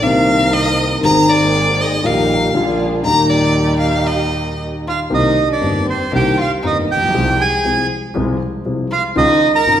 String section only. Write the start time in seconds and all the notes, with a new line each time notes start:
0.02 C4 D#4 A#4
1.03 A#3 C4 G#4
2.04 A#3 D#4 G4
2.54 A#3 D4 G#4
3.05 D#4 G4